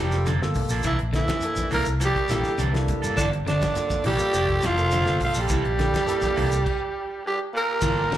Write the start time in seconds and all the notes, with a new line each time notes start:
Already playing: F1 E3 F3
0.00 G3 A#3 D4 G4 A4
0.12 A#3 F4 A4, snare, closed hi-hat, shekere
0.26 D3 F3 A#3 D4 A4, snare, closed hi-hat, high conga, shekere
0.41 G1 A#3 F4 A4, muted clean electric guitar stroke, snare
0.55 muted clean electric guitar stroke, kick, open hi-hat, low conga, shekere
0.69 A#1 A#3 D4 A4, snare, shekere
0.83 C2 E3 A#3 D4 E4 A4, kick, closed hi-hat, high conga, shekere
0.99 A#1, muted clean electric guitar stroke, closed hi-hat
1.13 D3 E3 A#3 D4 E4 A4, muted clean electric guitar stroke, kick, snare, closed hi-hat
1.28 muted clean electric guitar stroke, kick, snare, closed hi-hat, high conga, shekere
1.41 A#3 D4 E4, muted clean electric guitar stroke, closed hi-hat, high conga, shekere
1.45 A4
1.56 kick, closed hi-hat, high conga, shekere
1.71 C2 E3 A#3 D4 A4 A#4, open hi-hat, high conga, low conga, shekere
1.85 C2, muted clean electric guitar stroke, closed hi-hat, shekere
2.00 E3 F3 G3 A#3 A4, muted clean electric guitar stroke, closed hi-hat, high conga, shekere
2.05 G4
2.16 muted clean electric guitar stroke, kick, closed hi-hat
2.29 A#1 E3 G3 A#3 D4 E4 A4, snare, closed hi-hat, high conga, low conga, shekere
2.33 G3 G4
2.44 snare, shekere
2.58 C2 D3 E3 A#3 D4 A4, closed hi-hat, high conga, shekere
2.73 A#3 D4 E4 A4, muted clean electric guitar stroke, snare, closed hi-hat
2.88 muted clean electric guitar stroke, kick, closed hi-hat, low conga, shekere
3.02 G2 A#3 D4 A4, shekere
3.17 G1 D3 E3 F3 A#3 D4 A4, kick, snare, closed hi-hat, shekere
3.32 muted clean electric guitar stroke, closed hi-hat
3.46 G1 D3 D4, muted clean electric guitar stroke, snare, closed hi-hat
3.62 muted clean electric guitar stroke, kick, snare, closed hi-hat, high conga, shekere
3.75 A#3 F4 A4, muted clean electric guitar stroke, snare, closed hi-hat, high conga, shekere
3.90 kick, closed hi-hat, high conga, shekere
4.04 A#1 E3 F3 G3 A#3 D4 G4 A4, open hi-hat, low conga, shekere
4.18 A#3 F4 A4, muted fingered electric bass stroke, muted clean electric guitar stroke, closed hi-hat, shekere
4.33 F1 F3 A#3 D4 A4, muted clean electric guitar stroke, closed hi-hat, high conga, shekere
4.48 A#3 F4 A4, muted clean electric guitar stroke, kick, closed hi-hat
4.61 F1 E3 F3 A#3 D4 A4, snare, closed hi-hat, high conga, low conga, shekere
4.66 F4
4.77 A#3 F4 A4, closed hi-hat, shekere
4.91 D3 F3 A#3 D4 A4, closed hi-hat, high conga, shekere
5.05 G1 A#3 F4 A4, muted clean electric guitar stroke, snare
5.20 F3 F4, muted clean electric guitar stroke, kick, open hi-hat, low conga, shekere
5.25 F3
5.34 A#1 G3 A#3 D4 A4, shekere
5.39 G3 G4
5.49 C2 E3 A#3 D4 A4, kick, closed hi-hat, shekere
5.65 A#1, muted clean electric guitar stroke, closed hi-hat
5.78 D3 A#3 D4 E4 A4, muted clean electric guitar stroke, kick, snare, closed hi-hat
5.94 muted clean electric guitar stroke, kick, snare, closed hi-hat, high conga, shekere
6.07 A#3 D4 E4 A4, muted clean electric guitar stroke, snare, closed hi-hat, high conga, shekere
6.21 kick, snare, closed hi-hat, high conga, shekere
6.36 C2 E3 A#3 D4 A4, open hi-hat, high conga, low conga, shekere
6.51 C2, muted clean electric guitar stroke, closed hi-hat, shekere
6.66 kick, crash
7.25 G2 G3 G4
7.53 A#2 A#3 A#4
7.81 G1 E3 F3 A#3 D4 F4 A4 A#4, kick, crash, high conga, low conga, shekere
8.11 D3, muted clean electric guitar stroke, snare, ride bell